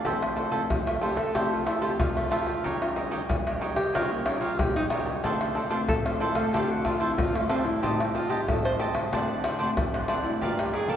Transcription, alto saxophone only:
0.87 1.03 F4 medium
1.01 1.19 G4 medium
1.17 1.37 A4 medium
1.35 1.54 G4 medium
1.53 1.68 F4 medium
1.67 1.84 E4 medium
1.82 1.99 G4 medium
2.00 3.25 F4 medium
3.76 3.96 G4 loud
3.95 4.13 F4 medium
4.12 4.27 A#3 medium
4.26 4.42 C#4 medium
4.41 4.61 F4 medium
4.59 4.75 G4 loud
4.76 4.86 D#4 medium
5.89 6.07 A4 medium
6.06 6.22 C4 medium
6.21 6.37 E4 medium
6.36 6.55 A4 loud
6.54 6.72 G4 medium
6.70 6.87 F#4 medium
6.85 7.02 F4 medium
7.01 7.20 E4 medium
7.19 7.37 F4 loud
7.36 7.51 A3 medium
7.49 7.67 C4 loud
7.65 7.85 E4 medium
7.84 8.02 D#4 medium
8.01 8.17 E4 medium
8.15 8.31 F4 medium
8.30 8.50 G4 medium
8.49 8.64 A4 medium
8.65 8.75 C5 medium
10.24 10.45 E4 medium
10.43 10.61 F4 medium
10.60 10.76 G4 medium
10.74 10.91 G#4 medium
10.90 10.96 A4 medium

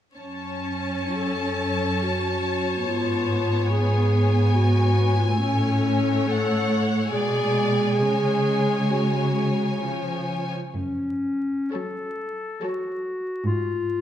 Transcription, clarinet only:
0.15 1.16 C#4 soft
1.15 2.04 A4 medium
2.03 2.86 F#4 soft
2.87 3.72 F4 medium
3.71 4.54 G#4 medium
4.55 5.16 F#4 medium
5.17 5.39 F4 medium
5.38 6.30 C#4 medium
6.28 6.86 A4 medium
7.12 7.96 G#4 medium
7.99 8.92 G#4 medium
8.90 9.82 F#4 soft
10.73 11.72 C#4 soft
11.71 12.63 A4 medium
12.62 13.45 F#4 medium
13.47 14.01 F4 medium

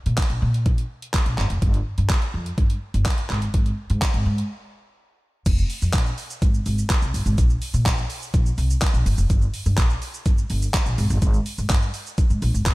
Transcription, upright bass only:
0.06 0.13 A#2 loud
0.30 0.37 A#1 medium
0.42 0.67 A#2 loud
0.66 0.81 A#1 loud
1.26 1.33 A#1 medium
1.38 1.45 G1 loud
1.50 1.57 F1 medium
1.62 1.77 G1 loud
1.98 2.05 G2 medium
2.34 2.49 F2 loud
2.58 2.73 G2 medium
2.94 3.01 G1 medium
3.30 3.45 G#1 medium
3.54 3.69 G#1 loud
3.90 3.97 G#2 loud
4.14 4.21 G#1 loud
4.26 4.41 G#2 loud
5.46 5.61 F1 loud
5.82 5.89 F2 medium
5.94 6.08 A#1 loud
6.42 6.57 G#1 medium
6.66 6.81 G#1 medium
7.02 7.09 C2 loud
7.14 7.21 G1 medium
7.26 7.33 G#1 medium
7.38 7.53 A#1 loud
7.74 7.87 A#2 medium
7.86 8.01 A#1 medium
8.34 8.49 A#1 loud
8.58 8.72 C2 medium
8.94 9.01 A#1 medium
9.06 9.13 G1 loud
9.18 9.25 F1 loud
9.30 9.45 G1 loud
9.66 9.73 G2 loud
9.78 9.92 A#1 loud
10.26 10.41 G1 medium
10.50 10.65 G1 medium
10.86 10.93 A#1 medium
10.98 11.05 G#1 loud
11.10 11.17 G1 loud
11.22 11.37 G#1 loud
11.58 11.65 G#2 medium
12.30 12.37 G#2 loud
12.42 12.49 A#1 loud
12.54 12.61 G#1 medium
12.67 12.74 G1 loud

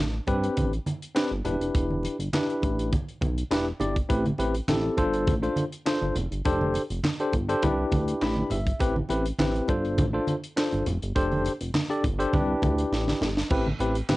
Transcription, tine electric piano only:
0.27 0.71 C4 loud
0.27 0.71 D4 medium
0.27 0.71 G4 medium
0.27 0.71 B4 loud
1.15 1.30 C4 loud
1.15 1.31 D4 medium
1.15 1.31 G4 medium
1.15 1.31 B4 loud
1.45 2.16 D4 medium
1.45 2.17 E4 medium
1.45 2.17 G4 medium
1.45 2.17 B4 loud
2.33 2.90 D4 medium
2.33 2.90 E4 medium
2.33 2.91 G4 medium
2.33 2.91 B4 loud
3.51 3.66 D4 medium
3.51 3.66 E4 medium
3.51 3.66 G4 medium
3.51 3.66 B4 loud
3.80 3.95 D4 medium
3.80 3.95 E4 medium
3.80 3.95 G4 medium
3.80 3.95 D5 loud
4.09 4.24 C4 medium
4.09 4.25 E4 medium
4.09 4.25 G4 medium
4.09 4.25 B4 loud
4.39 4.54 C4 medium
4.39 4.54 E4 medium
4.39 4.54 G4 medium
4.39 4.54 B4 loud
4.68 4.98 C4 medium
4.68 4.98 E4 medium
4.68 4.98 G4 medium
4.68 4.97 A4 medium
4.97 5.33 D4 medium
4.97 5.34 F4 medium
4.97 5.34 A4 medium
4.97 5.34 C5 loud
5.42 5.64 D4 medium
5.42 5.64 F4 medium
5.42 5.64 A4 medium
5.42 5.64 C5 medium
5.86 6.14 D4 medium
5.86 6.15 F4 medium
5.86 6.15 A4 medium
5.86 6.15 C5 loud
6.45 6.81 D4 loud
6.45 6.81 G4 medium
6.45 6.81 A4 medium
6.45 6.81 C5 loud
7.20 7.33 D4 medium
7.20 7.33 G4 medium
7.20 7.33 A4 medium
7.20 7.33 C5 loud
7.48 7.61 D4 loud
7.48 7.62 G4 medium
7.48 7.63 A4 loud
7.48 7.63 C5 loud
7.63 8.57 D4 medium
7.63 8.57 E4 medium
7.63 8.58 G4 medium
7.63 8.58 B4 loud
8.22 8.49 B5 medium
8.51 8.79 E5 medium
8.80 8.95 C4 medium
8.80 8.95 E4 medium
8.80 8.95 G4 medium
8.80 8.96 B4 loud
9.09 9.25 C4 medium
9.09 9.25 E4 medium
9.09 9.25 G4 medium
9.09 9.25 B4 loud
9.39 9.69 C4 medium
9.39 9.69 E4 medium
9.39 9.69 G4 medium
9.39 9.69 B4 loud
9.68 10.04 D4 loud
9.68 10.04 F4 medium
9.68 10.05 A4 medium
9.68 10.05 C5 loud
10.13 10.34 D4 medium
10.13 10.34 F4 medium
10.13 10.35 A4 medium
10.13 10.35 C5 medium
10.57 10.85 D4 medium
10.57 10.85 F4 medium
10.57 10.85 A4 medium
10.57 10.85 C5 medium
11.15 11.51 D4 medium
11.15 11.51 G4 medium
11.15 11.52 A4 medium
11.15 11.52 C5 loud
11.90 12.03 D4 medium
11.90 12.03 G4 medium
11.90 12.04 A4 medium
11.90 12.04 D5 loud
12.19 12.32 D4 loud
12.19 12.33 G4 loud
12.19 12.33 A4 loud
12.19 12.33 C5 loud
12.33 13.28 D4 medium
12.33 13.28 E4 medium
12.33 13.28 G4 medium
12.33 13.28 B4 loud
13.51 13.66 C4 loud
13.51 13.66 E4 medium
13.51 13.66 G4 medium
13.51 13.66 B4 loud
13.80 13.95 C4 medium
13.80 13.95 E4 medium
13.80 13.96 G4 medium
13.80 13.96 B4 loud
14.09 14.17 C4 medium
14.09 14.17 E4 medium
14.09 14.17 G4 medium
14.09 14.17 B4 loud

